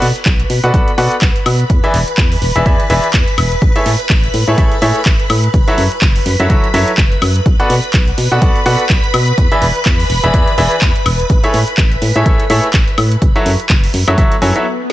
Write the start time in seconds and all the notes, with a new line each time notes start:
Already playing: B4 B5
0.02 B2, open hi-hat
0.16 closed hi-hat
0.25 B1, kick, clap, closed hi-hat
0.40 closed hi-hat
0.50 B2, open hi-hat
0.64 B2 B3 F#4 A4 B4 D5 F#5, closed hi-hat
0.74 B1 B3 F#4 A4 B4 D5 F#5, kick, closed hi-hat
0.88 closed hi-hat
0.98 B2 B3 F#4 A4 B4 D5 F#5, open hi-hat
1.12 closed hi-hat
1.22 B1, kick, clap, closed hi-hat
1.36 closed hi-hat
1.46 B2, open hi-hat, high woodblock
1.60 closed hi-hat
1.70 E2, kick, closed hi-hat
1.84 E3 E4 G#4 B4 D5 E5, closed hi-hat
1.94 E1, open hi-hat
2.08 closed hi-hat
2.17 E2, kick, clap, closed hi-hat
2.32 open hi-hat
2.42 E1, open hi-hat
2.56 E1 E3 E4 G#4 B4 D5 E5, closed hi-hat
2.66 E2 E3 E4 G#4 B4 D5 E5, kick, closed hi-hat
2.80 closed hi-hat
2.90 E1 E3 E4 G#4 B4 D5 E5, open hi-hat
3.04 closed hi-hat
3.13 E2, kick, clap, closed hi-hat
3.28 closed hi-hat
3.38 E1, open hi-hat, high woodblock
3.52 closed hi-hat
3.62 A1, kick, closed hi-hat
3.76 A3 E4 G#4 A4 C#5 E5, closed hi-hat
3.86 A2, open hi-hat
4.00 closed hi-hat
4.09 A1, kick, clap, closed hi-hat
4.24 closed hi-hat
4.34 A2, open hi-hat
4.48 A2 A3 E4 G#4 A4 C#5 E5, closed hi-hat
4.58 A1 A3 E4 G#4 A4 C#5 E5, kick, closed hi-hat
4.72 closed hi-hat
4.82 A2 A3 E4 G#4 A4 C#5 E5, open hi-hat
4.96 closed hi-hat
5.05 A1, kick, clap, closed hi-hat
5.20 closed hi-hat
5.30 A2, open hi-hat, high woodblock
5.44 closed hi-hat
5.54 F#1, kick, closed hi-hat
5.68 F#3 E4 F#4 A4 C#5 E5, closed hi-hat
5.78 F#2, open hi-hat
5.92 closed hi-hat
6.01 F#1, kick, clap, closed hi-hat
6.16 open hi-hat
6.26 F#2, open hi-hat
6.40 F#2 F#3 E4 F#4 A4 C#5 E5, closed hi-hat
6.50 F#1 F#3 E4 F#4 A4 C#5 E5, kick, closed hi-hat
6.64 closed hi-hat
6.74 F#2 F#3 E4 F#4 A4 C#5 E5, open hi-hat
6.88 closed hi-hat
6.97 F#1, kick, clap, closed hi-hat
7.12 closed hi-hat
7.22 F#2, open hi-hat, high woodblock
7.36 closed hi-hat
7.46 B1 B4 B5, kick, closed hi-hat
7.60 B3 F#4 A4 B4 D5 F#5, closed hi-hat
7.70 B2, open hi-hat
7.84 closed hi-hat
7.93 B1, kick, clap, closed hi-hat
8.08 closed hi-hat
8.18 B2, open hi-hat
8.32 B2 B3 F#4 A4 B4 D5 F#5
8.42 B1 B3 F#4 A4 B4 D5 F#5, kick, closed hi-hat
8.56 closed hi-hat
8.66 B2 B3 F#4 A4 B4 D5 F#5, open hi-hat
8.80 closed hi-hat
8.89 B1, kick, clap, closed hi-hat
9.04 closed hi-hat
9.14 B2, open hi-hat, high woodblock
9.28 closed hi-hat
9.38 E2, kick, closed hi-hat
9.52 E3 E4 G#4 B4 D5 E5, closed hi-hat
9.62 E1, open hi-hat
9.76 closed hi-hat
9.85 E2, kick, clap, closed hi-hat
10.00 open hi-hat
10.10 E1, open hi-hat
10.24 E1 E3 E4 G#4 B4 D5 E5, closed hi-hat
10.34 E2 E3 E4 G#4 B4 D5 E5, kick, closed hi-hat
10.48 closed hi-hat
10.58 E1 E3 E4 G#4 B4 D5 E5, open hi-hat
10.72 closed hi-hat
10.81 E2, kick, clap, closed hi-hat
10.96 closed hi-hat
11.06 E1, open hi-hat, high woodblock
11.20 closed hi-hat
11.30 A1, kick, closed hi-hat
11.44 A3 E4 G#4 A4 C#5 E5, closed hi-hat
11.54 A2, open hi-hat
11.68 closed hi-hat
11.77 A1, kick, clap, closed hi-hat
11.92 closed hi-hat
12.02 A2, open hi-hat
12.16 A2 A3 E4 G#4 A4 C#5 E5, closed hi-hat
12.26 A1 A3 G#4 A4 E5, kick, closed hi-hat
12.40 closed hi-hat
12.50 A2 A3 E4 G#4 A4 C#5 E5, open hi-hat
12.64 closed hi-hat
12.73 A1, kick, clap, closed hi-hat
12.88 closed hi-hat
12.98 A2, open hi-hat, high woodblock
13.12 closed hi-hat
13.22 F#1, kick, closed hi-hat
13.36 F#3 E4 F#4 A4 C#5 E5, closed hi-hat
13.46 F#2, open hi-hat
13.60 closed hi-hat
13.69 F#1, kick, clap, closed hi-hat
13.84 open hi-hat
13.94 F#2, open hi-hat
14.08 F#2 F#3 E4 F#4 A4 C#5 E5, high woodblock
14.18 F#1 F#3 E4 F#4 A4 C#5 E5, kick, closed hi-hat, swell
14.32 closed hi-hat
14.42 F#2 F#3 E4 F#4 A4 C#5 G#5, open hi-hat
14.56 F#3 E4 F#4 A4 C#5 E5, closed hi-hat